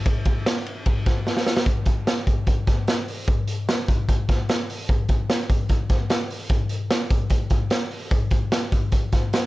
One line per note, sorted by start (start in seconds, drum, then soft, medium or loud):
0.06 kick loud
0.06 hi-hat pedal medium
0.06 ride medium
0.25 kick medium
0.25 ride medium
0.46 snare loud
0.46 ride medium
0.66 ride medium
0.86 kick medium
0.86 ride medium
1.06 kick medium
1.06 snare soft
1.06 ride medium
1.27 snare medium
1.37 snare medium
1.47 snare medium
1.57 snare loud
1.66 kick loud
1.66 closed hi-hat medium
1.85 kick medium
1.85 closed hi-hat medium
2.07 snare medium
2.07 closed hi-hat medium
2.27 kick medium
2.27 closed hi-hat medium
2.47 kick medium
2.47 closed hi-hat medium
2.67 kick medium
2.67 snare soft
2.67 closed hi-hat medium
2.87 snare medium
2.87 closed hi-hat medium
3.08 open hi-hat medium
3.28 kick loud
3.28 closed hi-hat medium
3.47 closed hi-hat medium
3.69 snare medium
3.69 closed hi-hat medium
3.88 kick medium
3.88 closed hi-hat medium
4.09 kick medium
4.09 closed hi-hat medium
4.29 kick medium
4.29 snare soft
4.29 closed hi-hat medium
4.49 snare medium
4.49 closed hi-hat medium
4.70 open hi-hat medium
4.89 kick loud
4.89 closed hi-hat medium
5.09 kick medium
5.09 closed hi-hat medium
5.30 snare loud
5.30 closed hi-hat medium
5.50 kick medium
5.50 closed hi-hat medium
5.69 kick medium
5.69 closed hi-hat medium
5.89 kick medium
5.89 snare soft
5.89 closed hi-hat medium
6.10 snare medium
6.10 closed hi-hat medium
6.30 open hi-hat medium
6.49 kick loud
6.49 closed hi-hat medium
6.69 closed hi-hat medium
6.91 snare loud
6.91 closed hi-hat medium
7.10 kick medium
7.10 closed hi-hat medium
7.30 kick medium
7.30 closed hi-hat medium
7.50 kick medium
7.50 closed hi-hat medium
7.70 snare medium
7.70 closed hi-hat medium
7.91 open hi-hat medium
8.11 kick loud
8.11 closed hi-hat medium
8.31 kick medium
8.31 closed hi-hat medium
8.52 snare loud
8.52 closed hi-hat medium
8.72 kick medium
8.72 closed hi-hat medium
8.92 kick medium
8.92 closed hi-hat medium
9.12 kick medium
9.12 snare soft
9.12 closed hi-hat medium
9.33 snare medium
9.33 closed hi-hat medium